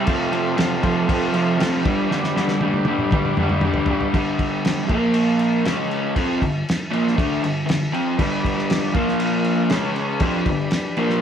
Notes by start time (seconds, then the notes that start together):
0.06 F2 C3 F3 A4 C5 F5, kick, crash
0.31 F2 C3 F3, crash
0.56 F2 C3 F3, snare, crash
0.82 F2 C3 F3, kick, crash
1.08 F2 C3 F3, kick, crash
1.33 F2 C3 F3, crash
1.58 F2 C3 F3, snare, crash
1.81 G2 D3 G4 B4 D5, crash
1.86 G3, kick
2.09 G2 D3 G3, snare
2.24 snare
2.36 G2 D3 G3, snare
2.48 snare
2.61 G2 D3 G3, high tom
2.74 high tom
2.85 G2 D3 G3, high tom
2.99 mid tom
3.11 G2 D3 G3, kick, mid tom
3.25 mid tom
3.37 G2 D3 G3, mid tom
3.49 mid tom
3.61 G2 D3, mid tom
3.65 G3
3.74 floor tom
3.86 G2 D3, floor tom
3.91 G3
4.01 floor tom
4.13 G2 D3 G3, kick, crash
4.39 kick, crash
4.65 snare, crash
4.88 A#2 F3 A#3, kick, crash
5.14 crash
5.39 crash
5.65 C#3 G#3 C#4, snare, crash
5.91 crash
6.16 F3 C4 F4, kick, crash
6.41 G2 D3, kick, crash
6.69 snare, crash
6.91 A#2 F3 A#3, crash
7.08 snare
7.15 D3 A3 D4, kick, crash
7.42 G2 D3, crash
7.66 G2 D3, snare, crash
7.93 F3 C4 F4, crash
8.18 G2 D3 G3 G4 B4 D5, kick, crash
8.45 kick, crash
8.58 snare
8.70 snare, crash
8.93 A#2 F3 A#3 F4 A#4 F5, kick, crash
9.08 snare
9.20 crash
9.44 crash
9.69 C#3 G#3 C#4 G#4 C#5, snare, crash
9.96 crash
10.19 F3 C4 D4 G4 B4, kick, crash
10.23 F4
10.46 G2 D3, kick, crash
10.71 snare, crash
10.97 A#2 F3 A#3, crash
11.10 snare